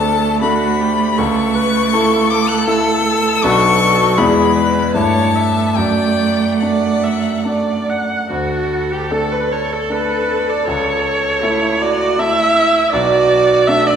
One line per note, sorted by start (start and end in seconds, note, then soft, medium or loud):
0.00 1.20 D2 medium
0.00 0.38 A3 medium
0.00 3.39 A3 medium
0.00 0.38 D4 medium
0.00 0.39 A4 medium
0.00 0.44 A4 medium
0.00 0.41 A5 loud
0.41 1.14 A3 medium
0.41 1.14 D4 medium
0.41 0.82 F#4 medium
0.41 1.14 A4 medium
0.41 1.19 B5 medium
0.81 1.19 G4 medium
1.18 1.91 C#2 medium
1.18 1.57 A4 medium
1.18 2.32 C#6 loud
1.55 1.93 B4 medium
1.93 2.63 A3 medium
1.93 2.64 E4 medium
1.93 4.18 A4 loud
1.93 2.64 A4 medium
2.30 2.50 D6 loud
2.49 2.67 F#6 loud
2.67 3.39 A3 medium
2.67 3.39 E4 medium
2.67 3.39 A4 medium
2.67 3.45 E6 loud
3.42 4.15 B1 medium
3.42 4.18 F#3 medium
3.42 4.14 F#3 medium
3.42 4.14 D4 medium
3.42 4.14 B4 medium
3.42 4.19 C#6 loud
4.17 4.93 E2 medium
4.17 4.97 G#3 medium
4.17 4.91 G#3 medium
4.17 4.91 E4 medium
4.17 4.57 G#4 medium
4.17 4.91 D5 medium
4.17 4.94 B5 loud
4.56 4.97 B4 medium
4.94 5.74 G2 medium
4.94 5.72 A3 medium
4.94 8.10 A3 medium
4.94 5.72 E4 medium
4.94 5.73 C#5 soft
4.94 5.37 C#5 medium
4.94 5.77 A5 loud
5.36 5.80 E5 medium
5.76 6.58 F#2 medium
5.76 6.54 D5 medium
5.76 6.62 G5 medium
6.60 7.41 A3 soft
6.60 7.41 D4 soft
6.60 7.05 D5 medium
6.60 7.41 D5 soft
6.60 7.88 F#5 medium
7.04 7.45 E5 medium
7.45 8.26 A3 soft
7.45 8.27 D4 soft
7.45 8.27 D5 soft
7.45 7.91 D5 medium
7.89 8.30 F#5 medium
8.30 9.08 D2 medium
8.30 8.93 F#4 medium
8.30 11.44 A4 medium
8.92 9.13 G4 medium
9.10 9.85 A3 soft
9.10 9.85 D4 soft
9.10 9.86 A4 soft
9.10 9.33 A4 medium
9.10 9.70 A5 medium
9.32 9.54 B4 medium
9.52 9.74 C#5 medium
9.73 9.93 A4 medium
9.90 10.62 A3 soft
9.90 10.62 D4 soft
9.90 10.63 A4 soft
9.90 10.51 B4 medium
9.90 10.47 A5 soft
10.49 10.67 D5 medium
10.67 11.40 C#2 medium
10.67 11.83 C#5 medium
11.43 12.14 A3 medium
11.43 11.80 E4 medium
11.43 12.14 E4 soft
11.43 12.14 A4 medium
11.43 11.99 A5 medium
11.80 12.20 F#4 medium
11.80 12.21 D5 medium
12.18 12.89 A3 medium
12.18 12.95 E4 medium
12.18 12.89 E4 soft
12.18 12.89 A4 soft
12.18 12.92 E5 loud
12.18 12.74 A5 medium
12.93 13.65 B1 medium
12.93 13.70 F#4 medium
12.93 13.69 D5 loud
13.67 13.96 A3 medium
13.67 13.96 D4 medium
13.67 13.96 F#4 medium
13.67 13.88 E5 loud
13.67 13.96 A5 medium
13.87 13.96 D5 medium